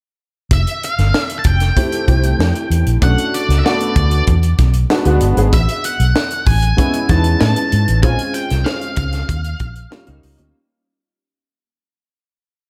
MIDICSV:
0, 0, Header, 1, 5, 480
1, 0, Start_track
1, 0, Tempo, 626959
1, 390, Time_signature, 4, 2, 24, 8
1, 9716, End_track
2, 0, Start_track
2, 0, Title_t, "Lead electric guitar"
2, 0, Program_c, 0, 29
2, 408, Note_on_c, 0, 76, 82
2, 623, Note_off_c, 0, 76, 0
2, 651, Note_on_c, 0, 77, 87
2, 957, Note_off_c, 0, 77, 0
2, 957, Note_on_c, 0, 76, 87
2, 1061, Note_off_c, 0, 76, 0
2, 1064, Note_on_c, 0, 81, 82
2, 1114, Note_off_c, 0, 81, 0
2, 1126, Note_on_c, 0, 79, 85
2, 2319, Note_off_c, 0, 79, 0
2, 2322, Note_on_c, 0, 78, 85
2, 2559, Note_on_c, 0, 74, 65
2, 2563, Note_off_c, 0, 78, 0
2, 2746, Note_off_c, 0, 74, 0
2, 2750, Note_on_c, 0, 76, 50
2, 2796, Note_off_c, 0, 76, 0
2, 2799, Note_on_c, 0, 74, 67
2, 3244, Note_off_c, 0, 74, 0
2, 4239, Note_on_c, 0, 76, 78
2, 4479, Note_on_c, 0, 78, 81
2, 4482, Note_off_c, 0, 76, 0
2, 4948, Note_off_c, 0, 78, 0
2, 4951, Note_on_c, 0, 80, 78
2, 5432, Note_off_c, 0, 80, 0
2, 5435, Note_on_c, 0, 81, 91
2, 5657, Note_off_c, 0, 81, 0
2, 5673, Note_on_c, 0, 81, 86
2, 6122, Note_off_c, 0, 81, 0
2, 6145, Note_on_c, 0, 80, 90
2, 6371, Note_off_c, 0, 80, 0
2, 6387, Note_on_c, 0, 79, 77
2, 6617, Note_on_c, 0, 77, 79
2, 6637, Note_off_c, 0, 79, 0
2, 6857, Note_off_c, 0, 77, 0
2, 6866, Note_on_c, 0, 77, 65
2, 7797, Note_off_c, 0, 77, 0
2, 9716, End_track
3, 0, Start_track
3, 0, Title_t, "Grand piano"
3, 0, Program_c, 1, 0
3, 525, Control_c, 1, 64, 127
3, 1350, Note_on_c, 1, 57, 79
3, 1352, Note_on_c, 1, 60, 72
3, 1356, Note_on_c, 1, 64, 74
3, 1358, Note_on_c, 1, 67, 87
3, 1543, Note_off_c, 1, 57, 0
3, 1544, Note_off_c, 1, 60, 0
3, 1546, Note_off_c, 1, 64, 0
3, 1547, Note_off_c, 1, 67, 0
3, 1594, Note_on_c, 1, 60, 63
3, 1595, Note_on_c, 1, 57, 66
3, 1597, Note_on_c, 1, 64, 58
3, 1600, Note_on_c, 1, 67, 68
3, 2171, Note_off_c, 1, 57, 0
3, 2171, Note_off_c, 1, 60, 0
3, 2172, Note_off_c, 1, 64, 0
3, 2174, Note_off_c, 1, 67, 0
3, 2308, Note_on_c, 1, 57, 74
3, 2309, Note_on_c, 1, 61, 68
3, 2314, Note_on_c, 1, 62, 69
3, 2317, Note_on_c, 1, 66, 78
3, 2319, Control_c, 1, 64, 0
3, 2437, Control_c, 1, 64, 127
3, 2695, Note_off_c, 1, 57, 0
3, 2695, Note_off_c, 1, 61, 0
3, 2698, Note_off_c, 1, 62, 0
3, 2700, Note_off_c, 1, 66, 0
3, 2792, Note_on_c, 1, 57, 70
3, 2796, Note_on_c, 1, 59, 58
3, 2797, Note_on_c, 1, 62, 63
3, 2802, Note_on_c, 1, 66, 74
3, 3271, Note_off_c, 1, 57, 0
3, 3273, Note_off_c, 1, 59, 0
3, 3274, Note_off_c, 1, 62, 0
3, 3276, Note_off_c, 1, 66, 0
3, 3280, Control_c, 1, 64, 0
3, 3414, Control_c, 1, 64, 127
3, 3753, Note_on_c, 1, 56, 78
3, 3755, Note_on_c, 1, 59, 75
3, 3760, Note_on_c, 1, 62, 80
3, 3762, Note_on_c, 1, 66, 89
3, 3848, Note_off_c, 1, 56, 0
3, 3849, Note_off_c, 1, 59, 0
3, 3852, Note_off_c, 1, 62, 0
3, 3853, Note_off_c, 1, 66, 0
3, 3874, Note_on_c, 1, 56, 92
3, 3875, Note_on_c, 1, 59, 82
3, 3880, Note_on_c, 1, 66, 97
3, 3881, Note_on_c, 1, 62, 82
3, 4065, Note_off_c, 1, 56, 0
3, 4066, Note_off_c, 1, 59, 0
3, 4069, Note_off_c, 1, 62, 0
3, 4069, Note_off_c, 1, 66, 0
3, 4112, Note_on_c, 1, 56, 68
3, 4114, Note_on_c, 1, 59, 61
3, 4116, Note_on_c, 1, 62, 61
3, 4121, Note_on_c, 1, 68, 73
3, 4232, Note_off_c, 1, 56, 0
3, 4233, Note_off_c, 1, 59, 0
3, 4234, Note_off_c, 1, 62, 0
3, 4236, Note_off_c, 1, 68, 0
3, 4243, Control_c, 1, 64, 0
3, 4355, Control_c, 1, 64, 127
3, 5181, Note_on_c, 1, 56, 77
3, 5185, Note_on_c, 1, 59, 71
3, 5190, Note_on_c, 1, 61, 73
3, 5194, Note_on_c, 1, 64, 84
3, 5379, Note_off_c, 1, 56, 0
3, 5381, Note_off_c, 1, 59, 0
3, 5384, Note_off_c, 1, 61, 0
3, 5386, Note_off_c, 1, 64, 0
3, 5424, Note_on_c, 1, 56, 66
3, 5428, Note_on_c, 1, 59, 62
3, 5433, Note_on_c, 1, 61, 61
3, 5434, Note_on_c, 1, 63, 55
3, 5482, Note_on_c, 1, 64, 67
3, 5483, Note_off_c, 1, 63, 0
3, 6006, Note_off_c, 1, 56, 0
3, 6008, Note_off_c, 1, 59, 0
3, 6011, Note_off_c, 1, 61, 0
3, 6035, Note_off_c, 1, 64, 0
3, 6145, Note_on_c, 1, 56, 76
3, 6149, Note_on_c, 1, 60, 70
3, 6152, Note_on_c, 1, 61, 69
3, 6156, Note_on_c, 1, 65, 79
3, 6160, Control_c, 1, 64, 0
3, 6310, Control_c, 1, 64, 127
3, 6534, Note_off_c, 1, 56, 0
3, 6536, Note_off_c, 1, 60, 0
3, 6537, Note_off_c, 1, 61, 0
3, 6539, Note_off_c, 1, 65, 0
3, 6624, Note_on_c, 1, 56, 63
3, 6626, Note_on_c, 1, 60, 65
3, 6627, Note_on_c, 1, 61, 66
3, 6633, Note_on_c, 1, 68, 80
3, 7108, Note_off_c, 1, 56, 0
3, 7109, Note_off_c, 1, 60, 0
3, 7109, Note_off_c, 1, 61, 0
3, 7112, Note_off_c, 1, 68, 0
3, 7123, Control_c, 1, 64, 0
3, 7265, Control_c, 1, 64, 127
3, 7583, Note_on_c, 1, 55, 85
3, 7587, Note_on_c, 1, 58, 71
3, 7591, Note_on_c, 1, 61, 77
3, 7592, Note_on_c, 1, 65, 91
3, 7683, Note_off_c, 1, 55, 0
3, 7685, Note_off_c, 1, 58, 0
3, 7687, Note_off_c, 1, 61, 0
3, 7688, Note_off_c, 1, 65, 0
3, 7701, Note_on_c, 1, 55, 86
3, 7703, Note_on_c, 1, 58, 74
3, 7704, Note_on_c, 1, 61, 77
3, 7710, Note_on_c, 1, 63, 98
3, 7898, Note_off_c, 1, 55, 0
3, 7900, Note_off_c, 1, 58, 0
3, 7900, Note_off_c, 1, 61, 0
3, 7903, Note_off_c, 1, 63, 0
3, 7941, Note_on_c, 1, 55, 78
3, 7942, Note_on_c, 1, 58, 69
3, 7945, Note_on_c, 1, 61, 70
3, 7948, Note_on_c, 1, 65, 84
3, 8066, Note_off_c, 1, 55, 0
3, 8066, Note_off_c, 1, 58, 0
3, 8067, Note_off_c, 1, 61, 0
3, 8069, Note_off_c, 1, 65, 0
3, 8081, Control_c, 1, 64, 0
3, 9716, End_track
4, 0, Start_track
4, 0, Title_t, "Fingered electric bass"
4, 0, Program_c, 2, 33
4, 391, Note_on_c, 2, 29, 92
4, 486, Note_off_c, 2, 29, 0
4, 755, Note_on_c, 2, 31, 69
4, 848, Note_off_c, 2, 31, 0
4, 1111, Note_on_c, 2, 29, 75
4, 1301, Note_off_c, 2, 29, 0
4, 1594, Note_on_c, 2, 36, 75
4, 1783, Note_off_c, 2, 36, 0
4, 1830, Note_on_c, 2, 41, 86
4, 1925, Note_off_c, 2, 41, 0
4, 2069, Note_on_c, 2, 40, 66
4, 2165, Note_off_c, 2, 40, 0
4, 2193, Note_on_c, 2, 34, 62
4, 2287, Note_off_c, 2, 34, 0
4, 2310, Note_on_c, 2, 35, 101
4, 2405, Note_off_c, 2, 35, 0
4, 2669, Note_on_c, 2, 37, 69
4, 2765, Note_off_c, 2, 37, 0
4, 3032, Note_on_c, 2, 38, 69
4, 3222, Note_off_c, 2, 38, 0
4, 3272, Note_on_c, 2, 40, 89
4, 3462, Note_off_c, 2, 40, 0
4, 3512, Note_on_c, 2, 35, 81
4, 3702, Note_off_c, 2, 35, 0
4, 3871, Note_on_c, 2, 38, 82
4, 3966, Note_off_c, 2, 38, 0
4, 3989, Note_on_c, 2, 31, 72
4, 4085, Note_off_c, 2, 31, 0
4, 4111, Note_on_c, 2, 32, 76
4, 4206, Note_off_c, 2, 32, 0
4, 4231, Note_on_c, 2, 33, 97
4, 4326, Note_off_c, 2, 33, 0
4, 4591, Note_on_c, 2, 35, 84
4, 4687, Note_off_c, 2, 35, 0
4, 4953, Note_on_c, 2, 33, 81
4, 5143, Note_off_c, 2, 33, 0
4, 5432, Note_on_c, 2, 40, 75
4, 5622, Note_off_c, 2, 40, 0
4, 5674, Note_on_c, 2, 45, 98
4, 5768, Note_off_c, 2, 45, 0
4, 5916, Note_on_c, 2, 44, 74
4, 6009, Note_off_c, 2, 44, 0
4, 6038, Note_on_c, 2, 33, 70
4, 6150, Note_off_c, 2, 33, 0
4, 6150, Note_on_c, 2, 34, 98
4, 6246, Note_off_c, 2, 34, 0
4, 6517, Note_on_c, 2, 36, 72
4, 6610, Note_off_c, 2, 36, 0
4, 6868, Note_on_c, 2, 37, 76
4, 7059, Note_off_c, 2, 37, 0
4, 7113, Note_on_c, 2, 39, 91
4, 7302, Note_off_c, 2, 39, 0
4, 7352, Note_on_c, 2, 34, 77
4, 7542, Note_off_c, 2, 34, 0
4, 7719, Note_on_c, 2, 37, 82
4, 7811, Note_off_c, 2, 37, 0
4, 7837, Note_on_c, 2, 37, 67
4, 7929, Note_off_c, 2, 37, 0
4, 7955, Note_on_c, 2, 38, 69
4, 8048, Note_off_c, 2, 38, 0
4, 9716, End_track
5, 0, Start_track
5, 0, Title_t, "Drums"
5, 390, Note_on_c, 9, 42, 79
5, 391, Note_on_c, 9, 36, 97
5, 467, Note_off_c, 9, 36, 0
5, 467, Note_off_c, 9, 42, 0
5, 514, Note_on_c, 9, 42, 52
5, 591, Note_off_c, 9, 42, 0
5, 639, Note_on_c, 9, 42, 58
5, 716, Note_off_c, 9, 42, 0
5, 756, Note_on_c, 9, 42, 38
5, 761, Note_on_c, 9, 38, 32
5, 832, Note_off_c, 9, 42, 0
5, 837, Note_off_c, 9, 38, 0
5, 876, Note_on_c, 9, 38, 90
5, 952, Note_off_c, 9, 38, 0
5, 993, Note_on_c, 9, 42, 46
5, 1070, Note_off_c, 9, 42, 0
5, 1104, Note_on_c, 9, 42, 66
5, 1110, Note_on_c, 9, 36, 86
5, 1181, Note_off_c, 9, 42, 0
5, 1186, Note_off_c, 9, 36, 0
5, 1227, Note_on_c, 9, 42, 47
5, 1236, Note_on_c, 9, 38, 27
5, 1304, Note_off_c, 9, 42, 0
5, 1312, Note_off_c, 9, 38, 0
5, 1352, Note_on_c, 9, 36, 77
5, 1355, Note_on_c, 9, 42, 81
5, 1429, Note_off_c, 9, 36, 0
5, 1432, Note_off_c, 9, 42, 0
5, 1472, Note_on_c, 9, 42, 49
5, 1549, Note_off_c, 9, 42, 0
5, 1593, Note_on_c, 9, 36, 64
5, 1594, Note_on_c, 9, 42, 51
5, 1669, Note_off_c, 9, 36, 0
5, 1671, Note_off_c, 9, 42, 0
5, 1712, Note_on_c, 9, 42, 48
5, 1788, Note_off_c, 9, 42, 0
5, 1841, Note_on_c, 9, 38, 105
5, 1917, Note_off_c, 9, 38, 0
5, 1956, Note_on_c, 9, 42, 46
5, 2032, Note_off_c, 9, 42, 0
5, 2079, Note_on_c, 9, 42, 67
5, 2155, Note_off_c, 9, 42, 0
5, 2195, Note_on_c, 9, 42, 45
5, 2272, Note_off_c, 9, 42, 0
5, 2312, Note_on_c, 9, 36, 101
5, 2313, Note_on_c, 9, 42, 77
5, 2388, Note_off_c, 9, 36, 0
5, 2389, Note_off_c, 9, 42, 0
5, 2437, Note_on_c, 9, 42, 50
5, 2514, Note_off_c, 9, 42, 0
5, 2560, Note_on_c, 9, 42, 63
5, 2636, Note_off_c, 9, 42, 0
5, 2683, Note_on_c, 9, 42, 40
5, 2688, Note_on_c, 9, 38, 33
5, 2759, Note_off_c, 9, 42, 0
5, 2764, Note_off_c, 9, 38, 0
5, 2801, Note_on_c, 9, 38, 87
5, 2878, Note_off_c, 9, 38, 0
5, 2914, Note_on_c, 9, 42, 46
5, 2990, Note_off_c, 9, 42, 0
5, 3030, Note_on_c, 9, 42, 64
5, 3032, Note_on_c, 9, 36, 83
5, 3107, Note_off_c, 9, 42, 0
5, 3108, Note_off_c, 9, 36, 0
5, 3148, Note_on_c, 9, 42, 46
5, 3224, Note_off_c, 9, 42, 0
5, 3270, Note_on_c, 9, 42, 74
5, 3274, Note_on_c, 9, 36, 79
5, 3346, Note_off_c, 9, 42, 0
5, 3350, Note_off_c, 9, 36, 0
5, 3392, Note_on_c, 9, 42, 45
5, 3468, Note_off_c, 9, 42, 0
5, 3511, Note_on_c, 9, 42, 53
5, 3512, Note_on_c, 9, 36, 65
5, 3516, Note_on_c, 9, 38, 29
5, 3587, Note_off_c, 9, 42, 0
5, 3589, Note_off_c, 9, 36, 0
5, 3593, Note_off_c, 9, 38, 0
5, 3626, Note_on_c, 9, 42, 48
5, 3703, Note_off_c, 9, 42, 0
5, 3752, Note_on_c, 9, 38, 100
5, 3829, Note_off_c, 9, 38, 0
5, 3869, Note_on_c, 9, 42, 45
5, 3945, Note_off_c, 9, 42, 0
5, 3987, Note_on_c, 9, 42, 67
5, 4064, Note_off_c, 9, 42, 0
5, 4113, Note_on_c, 9, 42, 43
5, 4190, Note_off_c, 9, 42, 0
5, 4232, Note_on_c, 9, 36, 93
5, 4233, Note_on_c, 9, 42, 78
5, 4309, Note_off_c, 9, 36, 0
5, 4310, Note_off_c, 9, 42, 0
5, 4354, Note_on_c, 9, 42, 53
5, 4431, Note_off_c, 9, 42, 0
5, 4473, Note_on_c, 9, 42, 61
5, 4549, Note_off_c, 9, 42, 0
5, 4593, Note_on_c, 9, 42, 44
5, 4670, Note_off_c, 9, 42, 0
5, 4713, Note_on_c, 9, 38, 94
5, 4790, Note_off_c, 9, 38, 0
5, 4829, Note_on_c, 9, 42, 42
5, 4905, Note_off_c, 9, 42, 0
5, 4949, Note_on_c, 9, 46, 60
5, 4951, Note_on_c, 9, 36, 82
5, 5026, Note_off_c, 9, 46, 0
5, 5027, Note_off_c, 9, 36, 0
5, 5071, Note_on_c, 9, 42, 45
5, 5148, Note_off_c, 9, 42, 0
5, 5194, Note_on_c, 9, 36, 80
5, 5197, Note_on_c, 9, 42, 77
5, 5270, Note_off_c, 9, 36, 0
5, 5274, Note_off_c, 9, 42, 0
5, 5311, Note_on_c, 9, 42, 45
5, 5388, Note_off_c, 9, 42, 0
5, 5428, Note_on_c, 9, 42, 52
5, 5431, Note_on_c, 9, 36, 76
5, 5434, Note_on_c, 9, 38, 31
5, 5505, Note_off_c, 9, 42, 0
5, 5508, Note_off_c, 9, 36, 0
5, 5510, Note_off_c, 9, 38, 0
5, 5544, Note_on_c, 9, 42, 49
5, 5620, Note_off_c, 9, 42, 0
5, 5670, Note_on_c, 9, 38, 101
5, 5747, Note_off_c, 9, 38, 0
5, 5790, Note_on_c, 9, 42, 46
5, 5867, Note_off_c, 9, 42, 0
5, 5913, Note_on_c, 9, 42, 70
5, 5989, Note_off_c, 9, 42, 0
5, 6033, Note_on_c, 9, 42, 44
5, 6110, Note_off_c, 9, 42, 0
5, 6148, Note_on_c, 9, 42, 76
5, 6149, Note_on_c, 9, 36, 101
5, 6225, Note_off_c, 9, 42, 0
5, 6226, Note_off_c, 9, 36, 0
5, 6270, Note_on_c, 9, 42, 51
5, 6346, Note_off_c, 9, 42, 0
5, 6387, Note_on_c, 9, 42, 67
5, 6464, Note_off_c, 9, 42, 0
5, 6511, Note_on_c, 9, 42, 41
5, 6516, Note_on_c, 9, 38, 33
5, 6588, Note_off_c, 9, 42, 0
5, 6593, Note_off_c, 9, 38, 0
5, 6632, Note_on_c, 9, 38, 102
5, 6709, Note_off_c, 9, 38, 0
5, 6748, Note_on_c, 9, 42, 44
5, 6825, Note_off_c, 9, 42, 0
5, 6863, Note_on_c, 9, 42, 64
5, 6869, Note_on_c, 9, 36, 87
5, 6940, Note_off_c, 9, 42, 0
5, 6945, Note_off_c, 9, 36, 0
5, 6987, Note_on_c, 9, 42, 48
5, 6996, Note_on_c, 9, 38, 30
5, 7064, Note_off_c, 9, 42, 0
5, 7072, Note_off_c, 9, 38, 0
5, 7112, Note_on_c, 9, 36, 80
5, 7115, Note_on_c, 9, 42, 82
5, 7189, Note_off_c, 9, 36, 0
5, 7192, Note_off_c, 9, 42, 0
5, 7231, Note_on_c, 9, 42, 46
5, 7307, Note_off_c, 9, 42, 0
5, 7348, Note_on_c, 9, 42, 53
5, 7351, Note_on_c, 9, 36, 73
5, 7424, Note_off_c, 9, 42, 0
5, 7427, Note_off_c, 9, 36, 0
5, 7470, Note_on_c, 9, 42, 47
5, 7546, Note_off_c, 9, 42, 0
5, 7594, Note_on_c, 9, 38, 107
5, 7671, Note_off_c, 9, 38, 0
5, 7709, Note_on_c, 9, 42, 50
5, 7786, Note_off_c, 9, 42, 0
5, 7834, Note_on_c, 9, 46, 65
5, 7911, Note_off_c, 9, 46, 0
5, 7950, Note_on_c, 9, 42, 43
5, 8026, Note_off_c, 9, 42, 0
5, 9716, End_track
0, 0, End_of_file